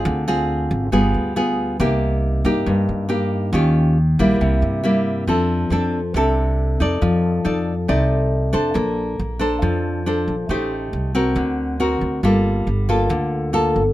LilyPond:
<<
  \new Staff \with { instrumentName = "Nylon-string guitar" } { \time 4/4 \key c \phrygian \tempo 4 = 138 << { <c' f' aes'>8 <c' f' aes'>4. <b f' aes'>4 <b f' aes'>4 | <bes ees' g'>4. <bes ees' g'>4. <bes ees' g'>4 | <des' f' g'>4 r8 <g bes fes'>4. <g bes e'>4 | \key f \major <c' d' a'>4 <c' d' a'>8 r8 <c' d' a'>4. <ees' a' d''>8~ |
<ees' a' d''>4 <ees' a' d''>8 r8 <ees' a' d''>4. <d' a' c''>8~ | <d' a' c''>4 r8 <d' a' c''>4. <d' a' c''>8 r8 | <ees' g' c''>4. <c' ges' bes'>4. <c' fis' ais'>4 | <bes f' a'>4 r8 <bes f' a'>4. <bes f' a'>8 r8 | } \\ { d2 g2 | c2 g,2 | ees2 c2 | f2 c2 |
f2 c2 | bes2 f2 | a2 d2 | g2 d2 | } >> }
  \new Staff \with { instrumentName = "Upright bass" } { \clef bass \time 4/4 \key c \phrygian d,4. aes,,8 g,,8 d,4. | c,4. g,8 g,8 g,4. | ees,4. bes,,8 c,8 g,4. | \key f \major f,4 f,4 c,4. f,8 |
f,4 f,4 c,4. f,8 | bes,,4 bes,,4 f,4. bes,,8 | a,,4 c,4 d,4. d,8 | g,,4 g,,4 d,4. g,,8 | }
>>